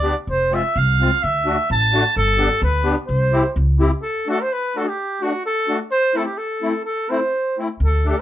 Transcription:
0.00 0.11 D2 medium
0.00 0.14 B3 soft
0.00 0.14 D4 soft
0.00 0.14 G4 medium
0.00 0.16 D5 loud
0.27 0.59 F1 medium
0.27 0.55 C5 medium
0.51 0.62 G#3 medium
0.51 0.62 C4 medium
0.51 0.63 F4 medium
0.51 0.79 E5 medium
0.76 1.06 C2 loud
0.76 1.25 F5 loud
1.00 1.10 G#3 medium
1.00 1.11 C4 medium
1.00 1.11 F4 medium
1.23 1.54 D2 medium
1.23 1.70 E5 loud
1.46 1.57 A3 medium
1.46 1.57 D4 medium
1.46 1.57 F#4 medium
1.70 2.00 A1 loud
1.70 2.14 A5 loud
1.93 2.04 A3 medium
1.93 2.03 D4 medium
1.93 2.03 F#4 medium
2.16 2.46 G1 medium
2.16 2.60 A4 loud
2.38 2.49 B3 medium
2.38 2.49 D4 medium
2.38 2.49 G4 medium
2.62 2.92 D2 loud
2.62 2.96 B4 loud
2.84 2.95 B3 medium
2.84 2.95 D4 medium
2.84 2.95 G4 medium
3.07 3.40 C2 medium
3.07 3.52 C5 medium
3.32 3.43 C4 medium
3.32 3.44 E4 medium
3.32 3.43 G4 medium
3.56 3.87 C#2 medium
3.80 3.91 C4 medium
3.80 3.91 E4 medium
3.80 3.91 G4 medium
4.02 4.26 A4 medium
4.27 4.39 A3 medium
4.27 4.39 D4 medium
4.27 4.39 F#4 medium
4.27 4.43 A4 medium
4.41 4.54 C5 medium
4.52 4.79 B4 medium
4.76 4.86 A3 medium
4.76 4.86 D4 soft
4.76 4.86 F#4 medium
4.76 4.90 A4 medium
4.88 5.24 G4 medium
5.21 5.32 A3 medium
5.21 5.33 D4 medium
5.21 5.32 F#4 medium
5.21 5.46 F#4 medium
5.46 5.78 A4 loud
5.68 5.79 A3 medium
5.68 5.79 D4 medium
5.68 5.79 F#4 medium
5.91 6.18 C5 loud
6.14 6.25 A3 medium
6.14 6.26 C4 medium
6.14 6.25 E4 medium
6.14 6.25 A4 medium
6.26 6.39 G4 medium
6.38 6.85 A4 medium
6.62 6.73 A3 medium
6.62 6.73 C4 medium
6.62 6.73 E4 medium
6.85 7.11 A4 medium
7.09 7.20 A3 medium
7.09 7.20 C4 medium
7.09 7.20 E4 medium
7.09 7.57 C5 medium
7.58 7.68 A3 medium
7.58 7.68 C4 soft
7.58 7.69 E4 medium
7.80 8.11 D2 medium
7.85 8.05 A4 medium
8.05 8.16 A3 medium
8.05 8.16 D4 medium
8.05 8.16 G4 medium
8.09 8.21 A4 medium

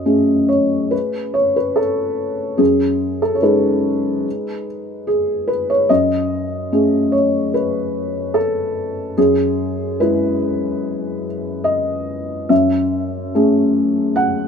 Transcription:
0.00 0.95 F#2 soft
0.00 0.49 D#5 medium
0.05 2.55 A3 soft
0.05 2.55 C#4 soft
0.05 2.55 G#4 soft
0.49 0.91 C#5 medium
0.91 1.34 B4 medium
1.34 1.55 C#5 medium
1.56 1.77 B4 medium
1.76 2.59 A4 medium
2.58 3.39 F#2 soft
2.58 3.20 G#4 medium
3.22 3.36 A4 medium
3.35 3.42 C#5 soft
3.42 5.86 G#3 soft
3.42 5.86 D#4 soft
3.42 5.06 G#4 soft
3.42 4.66 B4 medium
5.07 5.48 G#4 medium
5.48 5.68 B4 medium
5.70 5.90 C#5 medium
5.89 6.69 F#2 soft
5.89 7.12 D#5 medium
6.72 9.13 A3 soft
6.72 9.14 C#4 soft
6.72 9.14 G#4 soft
7.12 7.53 C#5 medium
7.54 8.35 B4 medium
8.34 9.17 A4 medium
9.18 9.97 F#2 soft
9.18 10.00 G#4 medium
10.00 12.47 G#3 soft
10.00 12.48 E4 soft
10.00 12.48 G#4 soft
10.00 11.24 B4 medium
11.64 12.50 D#5 medium
12.49 13.32 F#2 soft
12.49 14.17 E5 medium
13.35 14.48 A3 soft
13.35 14.48 C#4 soft
13.35 14.48 G#4 soft
14.16 14.48 F#5 medium

